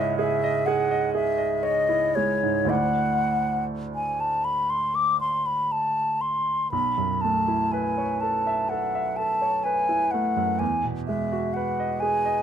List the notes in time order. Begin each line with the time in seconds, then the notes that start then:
Already playing: C#2 G#2 G#3 E4 C#5 D#5 E5
0.18 G#4 E5
0.44 D#5
0.66 G#4 F#5
0.91 D#5
1.14 G#4 E5
1.38 D#5
1.63 C#5 D#5
1.89 E4
2.15 G#3 C#5
2.43 G#2
2.65 D2 A3 E4 C5 D5
2.70 F#5
3.95 G#5
4.20 A5
4.44 B5
4.70 C6
4.95 D6
5.21 C6
5.46 B5
5.72 A5
6.21 C6
6.71 B1 B5
6.98 F#2
7.21 A3 A5
7.48 E4
7.72 B4 G#5
7.98 C#5
8.21 A4 A5
8.47 E5
8.69 A4 F#5
8.95 E5
9.17 A4 A5
9.42 C#5
9.64 B4 G#5
9.89 E4
10.11 A3 F#5
10.36 F#2
10.59 E2 G#5
10.84 B2
11.07 G#3 E5
11.32 F#4
11.54 B4 F#5
11.80 D#5
12.00 G#4 G#5
12.25 D#5